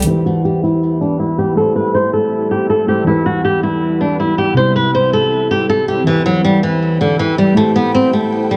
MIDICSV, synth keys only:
0, 0, Header, 1, 2, 480
1, 0, Start_track
1, 0, Key_signature, 1, "minor"
1, 0, Tempo, 375000
1, 90, Time_signature, 4, 2, 24, 8
1, 10964, End_track
2, 0, Start_track
2, 0, Title_t, "Synth keys"
2, 0, Program_c, 0, 88
2, 0, Control_c, 0, 64, 127
2, 50, Note_on_c, 0, 52, 69
2, 77, Note_on_c, 0, 64, 61
2, 103, Note_on_c, 0, 67, 60
2, 109, Control_c, 0, 64, 0
2, 130, Note_on_c, 0, 71, 72
2, 335, Control_c, 0, 64, 127
2, 1951, Note_off_c, 0, 52, 0
2, 1965, Note_off_c, 0, 64, 0
2, 1971, Note_on_c, 0, 57, 72
2, 1978, Note_off_c, 0, 67, 0
2, 1992, Note_off_c, 0, 71, 0
2, 1998, Note_on_c, 0, 64, 62
2, 2024, Control_c, 0, 64, 0
2, 2025, Note_on_c, 0, 67, 66
2, 2051, Note_on_c, 0, 72, 72
2, 2276, Control_c, 0, 64, 127
2, 3636, Note_off_c, 0, 57, 0
2, 3650, Note_off_c, 0, 64, 0
2, 3664, Note_off_c, 0, 67, 0
2, 3668, Note_on_c, 0, 57, 51
2, 3677, Note_off_c, 0, 72, 0
2, 3681, Note_on_c, 0, 64, 49
2, 3695, Note_on_c, 0, 67, 48
2, 3708, Note_on_c, 0, 72, 58
2, 3886, Note_on_c, 0, 52, 72
2, 3897, Note_off_c, 0, 64, 0
2, 3912, Note_on_c, 0, 64, 60
2, 3919, Note_off_c, 0, 57, 0
2, 3923, Note_off_c, 0, 67, 0
2, 3939, Note_off_c, 0, 72, 0
2, 3939, Note_on_c, 0, 67, 61
2, 3948, Control_c, 0, 64, 0
2, 3965, Note_on_c, 0, 71, 72
2, 4175, Control_c, 0, 64, 127
2, 5789, Note_off_c, 0, 52, 0
2, 5802, Note_off_c, 0, 64, 0
2, 5806, Note_on_c, 0, 48, 66
2, 5816, Note_off_c, 0, 67, 0
2, 5829, Note_off_c, 0, 71, 0
2, 5832, Note_on_c, 0, 60, 61
2, 5859, Note_on_c, 0, 64, 63
2, 5869, Control_c, 0, 64, 0
2, 5885, Note_on_c, 0, 67, 75
2, 6115, Control_c, 0, 64, 127
2, 7709, Note_off_c, 0, 48, 0
2, 7722, Note_off_c, 0, 60, 0
2, 7729, Note_on_c, 0, 52, 68
2, 7736, Note_off_c, 0, 64, 0
2, 7749, Note_off_c, 0, 67, 0
2, 7755, Note_on_c, 0, 64, 66
2, 7782, Note_on_c, 0, 67, 67
2, 7784, Control_c, 0, 64, 0
2, 7808, Note_on_c, 0, 71, 79
2, 7995, Control_c, 0, 64, 127
2, 9630, Note_off_c, 0, 52, 0
2, 9644, Note_off_c, 0, 64, 0
2, 9648, Note_on_c, 0, 57, 74
2, 9658, Note_off_c, 0, 67, 0
2, 9671, Note_off_c, 0, 71, 0
2, 9674, Note_on_c, 0, 64, 67
2, 9701, Note_on_c, 0, 67, 66
2, 9709, Control_c, 0, 64, 0
2, 9727, Note_on_c, 0, 72, 81
2, 9928, Control_c, 0, 64, 127
2, 10964, Note_off_c, 0, 57, 0
2, 10964, Note_off_c, 0, 64, 0
2, 10964, Note_off_c, 0, 67, 0
2, 10964, Note_off_c, 0, 72, 0
2, 10964, End_track
0, 0, End_of_file